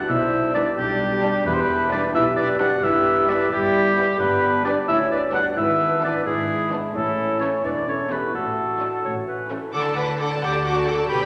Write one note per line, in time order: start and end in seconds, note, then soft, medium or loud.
0.00 0.12 G2 medium
0.00 0.31 D4 soft
0.00 0.12 E4 medium
0.00 0.54 G4 soft
0.00 0.99 B4 soft
0.00 0.77 D5 medium
0.09 0.64 B1 medium
0.09 1.49 B2 medium
0.09 0.65 B2 medium
0.09 1.47 D4 medium
0.09 0.54 E4 medium
0.09 0.55 C5 medium
0.09 0.54 E5 medium
0.32 1.68 D4 soft
0.55 0.73 G3 medium
0.55 0.72 D4 medium
0.55 0.66 D4 medium
0.55 0.73 D4 medium
0.55 1.23 G4 soft
0.55 0.61 B4 medium
0.55 0.65 D5 medium
0.78 1.32 B1 medium
0.78 1.33 B1 medium
0.78 1.33 B2 medium
0.78 1.46 G3 medium
0.78 1.46 D4 medium
0.78 1.45 G4 medium
0.78 2.14 D5 soft
1.00 2.37 B4 soft
1.23 1.41 G3 medium
1.23 1.40 D4 medium
1.23 1.91 G4 medium
1.46 2.01 E1 medium
1.46 2.01 E2 medium
1.46 2.85 E2 medium
1.46 1.93 B3 medium
1.46 2.16 E4 medium
1.46 1.91 G4 medium
1.46 1.55 B4 medium
1.54 1.62 C5 medium
1.61 1.91 B4 medium
1.69 2.85 D4 soft
1.91 2.10 G3 medium
1.91 2.08 B3 medium
1.91 2.09 D4 medium
1.91 2.04 D4 medium
1.91 2.59 G4 medium
1.91 2.14 B4 medium
1.91 2.02 D5 medium
2.14 2.69 B1 medium
2.14 2.69 B2 medium
2.14 2.25 E4 medium
2.14 3.51 G4 medium
2.14 2.36 B4 medium
2.14 2.85 D5 medium
2.14 2.25 E5 medium
2.37 2.60 D4 medium
2.37 2.59 B4 medium
2.37 3.74 B4 medium
2.37 2.47 D5 medium
2.59 2.78 G3 medium
2.59 2.77 B3 medium
2.59 2.78 D4 medium
2.59 2.83 F#4 medium
2.59 3.28 G4 medium
2.59 2.83 D5 medium
2.59 2.85 F#5 medium
2.83 3.37 G1 medium
2.83 3.37 G2 medium
2.83 4.19 G2 medium
2.83 3.28 E4 medium
2.83 3.28 B4 medium
2.83 3.31 E5 medium
3.06 4.21 E4 soft
3.27 3.46 G3 medium
3.27 3.46 B3 medium
3.27 3.39 D4 medium
3.27 3.45 E4 medium
3.27 3.97 G4 medium
3.27 3.51 B4 medium
3.27 3.52 D5 medium
3.51 4.05 G1 medium
3.51 4.06 G2 medium
3.51 4.19 G3 medium
3.51 4.18 E4 medium
3.51 3.89 E4 medium
3.51 4.19 G4 medium
3.51 4.22 E5 medium
3.75 5.11 B4 soft
3.96 4.14 G3 medium
3.96 4.14 B3 medium
3.96 4.14 E4 medium
3.96 4.65 G4 medium
4.19 4.74 G1 medium
4.19 4.74 G2 medium
4.19 5.59 G2 medium
4.19 4.65 B3 medium
4.19 4.87 D4 medium
4.19 4.64 G4 medium
4.19 4.64 B4 medium
4.43 5.80 D4 soft
4.65 4.83 G3 medium
4.65 4.83 B3 medium
4.65 4.75 D4 medium
4.65 4.83 D4 medium
4.65 5.33 G4 soft
4.65 4.71 B4 medium
4.65 4.75 D5 medium
4.88 5.42 D2 medium
4.88 5.32 C#4 medium
4.88 4.99 E4 medium
4.88 5.11 C#5 medium
4.88 6.25 D5 soft
4.88 4.98 E5 medium
5.11 5.33 D4 medium
5.11 5.17 B4 medium
5.11 6.48 B4 soft
5.11 5.21 D5 medium
5.33 5.51 G3 medium
5.33 5.51 B3 medium
5.33 5.50 D4 medium
5.33 5.56 F#4 medium
5.33 5.59 G4 soft
5.33 5.58 D5 medium
5.33 5.45 F#5 medium
5.55 6.11 G#1 medium
5.55 6.12 G#2 medium
5.55 6.97 G#2 medium
5.55 6.22 B3 medium
5.55 6.01 E4 medium
5.55 6.02 B4 medium
5.55 6.02 E5 medium
5.81 6.97 D4 soft
6.02 6.20 E3 medium
6.02 6.20 B3 medium
6.02 6.24 D4 medium
6.02 6.19 D4 soft
6.02 6.71 E4 soft
6.02 6.24 B4 medium
6.02 6.14 D5 medium
6.25 6.80 G#1 medium
6.25 6.80 G#2 medium
6.25 6.93 G#3 medium
6.25 6.69 E4 medium
6.25 6.97 E4 medium
6.25 6.69 G#4 medium
6.25 6.96 D5 soft
6.49 6.96 B4 soft
6.71 6.88 E3 medium
6.71 6.89 B3 soft
6.71 6.89 D4 medium
6.71 7.40 E4 soft
6.94 7.49 A1 medium
6.94 8.33 A2 soft
6.94 7.49 A2 medium
6.94 7.39 A3 medium
6.94 7.66 C#4 medium
6.94 7.37 E4 medium
6.94 7.38 A4 medium
7.18 8.35 C#4 soft
7.40 7.58 E3 soft
7.40 7.58 A3 medium
7.40 7.51 C#4 soft
7.40 7.58 C#4 soft
7.40 8.09 E4 soft
7.40 7.47 A4 medium
7.40 7.51 C#5 medium
7.64 8.19 E1 medium
7.64 8.19 E2 soft
7.64 7.86 D4 medium
7.64 8.34 E4 medium
7.64 7.70 B4 medium
7.64 8.36 C#5 soft
7.64 7.87 D5 medium
7.86 8.09 C#4 soft
7.86 8.11 A4 soft
7.86 8.80 A4 soft
7.86 8.13 C#5 medium
8.07 8.27 E3 soft
8.07 8.27 A3 soft
8.07 8.32 B3 soft
8.07 8.28 C#4 soft
8.07 8.35 E4 soft
8.07 8.33 G4 soft
8.07 8.34 B4 medium
8.33 8.89 A1 soft
8.33 9.02 A2 soft
8.33 8.90 A2 soft
8.33 9.03 A3 soft
8.33 9.02 F#4 soft
8.33 9.37 F#4 soft
8.33 9.03 A4 medium
8.57 9.06 D4 soft
8.80 8.98 F#3 soft
8.80 8.97 A3 soft
8.80 8.98 D4 soft
8.80 9.06 F#4 soft
8.80 9.50 A4 soft
9.04 9.59 A1 soft
9.04 9.75 A2 soft
9.04 9.60 A2 soft
9.04 9.15 C#5 soft
9.27 9.75 C#4 soft
9.27 9.53 B4 soft
9.50 9.68 E3 soft
9.50 9.68 A3 soft
9.50 9.67 C#4 soft
9.50 9.75 E4 soft
9.50 10.41 A4 soft
9.50 9.74 A4 soft
9.73 10.34 D2 soft
9.73 10.34 D2 medium
9.73 11.13 D3 soft
9.73 10.34 D3 soft
9.73 9.95 A4 medium
9.73 9.84 A4 soft
9.73 9.84 F#5 soft
9.73 9.84 D6 soft
9.83 9.96 D5 soft
9.83 9.95 A5 soft
9.83 9.96 A5 soft
9.96 11.25 D4 soft
9.96 10.08 A4 soft
9.96 10.04 B4 medium
9.96 10.08 F#5 soft
9.96 10.08 D6 soft
10.06 10.19 D5 soft
10.06 10.19 A5 soft
10.18 11.13 F#4 soft
10.18 10.26 A4 medium
10.18 10.30 A4 soft
10.18 10.30 F#5 soft
10.18 10.30 D6 soft
10.29 10.43 D5 soft
10.29 10.42 A5 soft
10.29 10.43 A5 soft
10.42 11.03 D2 soft
10.42 11.04 D3 soft
10.42 10.65 G4 medium
10.42 10.87 A4 soft
10.42 10.54 A4 soft
10.42 10.54 F#5 soft
10.42 10.54 D6 soft
10.53 10.65 D5 soft
10.53 10.65 A5 soft
10.65 10.88 F#4 medium
10.65 10.76 A4 soft
10.65 11.25 D5 soft
10.65 10.76 F#5 soft
10.65 10.76 D6 soft
10.76 10.88 D5 soft
10.76 10.88 A5 soft
10.87 11.11 A4 medium
10.87 10.99 A4 soft
10.87 11.13 A4 soft
10.87 11.00 F#5 soft
10.87 10.99 D6 soft
10.97 11.10 D5 soft
10.97 11.10 A5 soft
11.09 11.25 B1 medium
11.09 11.25 B2 medium
11.09 11.25 G4 medium
11.09 11.21 B4 soft
11.09 11.21 G5 soft
11.09 11.21 B5 soft
11.20 11.25 D5 soft
11.20 11.25 G5 soft
11.20 11.25 B5 soft